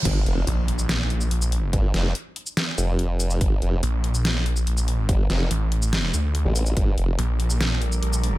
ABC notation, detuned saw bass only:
X:1
M:4/4
L:1/8
Q:1/4=143
K:Gm
V:1 name="Detuned saw bass" clef=bass
z2 B,,,4 B,,,2 | z8 | z2 B,,,4 B,,,2 | z2 A,,,3 D,, z2 |
z2 B,,,4 B,,,2 |]